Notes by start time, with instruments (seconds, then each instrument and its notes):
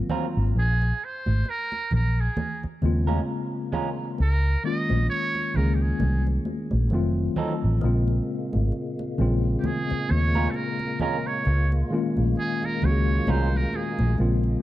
Already playing: tine electric piano D#3 F#3 A#3 C4 F4
0.09 clean electric guitar F#3 C4 F4 A#4, high conga, low conga
0.37 fingered electric bass G#1
0.56 fingered electric bass A#1, muted trumpet G#4
0.82 muted conga
1.04 muted trumpet C5
1.26 fingered electric bass G#1, high conga
1.45 muted conga
1.49 muted trumpet A#4
1.72 muted conga
1.91 fingered electric bass A#1, muted trumpet A#4, low conga
2.21 muted trumpet G#4
2.37 muted conga, high conga, low conga
2.63 muted fingered electric bass stroke, muted conga
2.82 fingered electric bass D#2, tine electric piano C#3 G#3 A#3 C4 F4, high conga
3.07 clean electric guitar G#3 C#4 F4 A#4, high conga
3.73 clean electric guitar G#3 C#4 F4 A#4, high conga, low conga
4.18 fingered electric bass C#2, muted trumpet A#4, muted conga
4.64 tine electric piano D#3 G#3 A#3 C#4 F4, muted trumpet D#5
4.90 fingered electric bass A#1, high conga
5.08 muted trumpet C#5, muted conga
5.35 muted conga
5.54 fingered electric bass C#2, tine electric piano D#3 G#3 A#3 C#4, muted trumpet A#4, low conga
5.58 tine electric piano G#4
5.75 muted trumpet G4
5.82 muted trumpet G#4
6.00 fingered electric bass C2, muted conga, high conga, low conga
6.27 muted conga
6.45 high conga
6.71 fingered electric bass A#1, high conga
6.90 fingered electric bass F1, tine electric piano D#3 F#3 A3 C4, muted conga
6.94 tine electric piano F4
7.36 clean electric guitar F#3 C4 D#4 A4, high conga, low conga
7.64 fingered electric bass A1
7.81 fingered electric bass A#1, tonewheel organ A#2 G#3 A#3, tine electric piano C#3 G#3 A#3 C4, muted conga
7.86 tine electric piano F4
8.08 muted conga
8.53 fingered electric bass G#1, high conga
8.72 muted conga
8.99 muted conga
9.18 fingered electric bass A#1, tine electric piano C#3 G#3 A#3 C4 F4, low conga
9.60 muted trumpet G4
9.64 muted trumpet G#4, muted conga, high conga, low conga
9.90 muted fingered electric bass stroke, muted conga
10.09 fingered electric bass D#2, muted trumpet C#5, high conga
10.35 clean electric guitar G#3 C#4 F4 A#4, high conga
10.51 muted trumpet A4, muted conga
10.55 muted trumpet A#4
10.79 muted conga
11.00 clean electric guitar G#3 C#4 F4 A#4, muted trumpet A#4, high conga, low conga
11.27 muted trumpet C#5
11.45 fingered electric bass C#2, tonewheel organ F4, muted conga
11.72 muted conga
11.91 tine electric piano D#3 G#3 A#3 C#4 F4
12.17 fingered electric bass A#1, high conga
12.36 muted trumpet G#4, muted conga
12.63 muted trumpet A#4, muted conga
12.82 fingered electric bass C#2, tine electric piano D#3 G#3 A#3 C#4 F#4, muted trumpet C#5, low conga
12.92 tine electric piano G#4
13.27 fingered electric bass C2, clean electric guitar G#3 C#4 F4 A#4, muted trumpet C5, high conga, low conga
13.54 muted trumpet A#4, muted conga
13.73 muted trumpet G#4, high conga
13.99 fingered electric bass A#1, high conga
14.18 fingered electric bass A#1, tine electric piano C#3 G#3 A#3 C4 F4, tonewheel organ G#3, muted conga
14.44 muted conga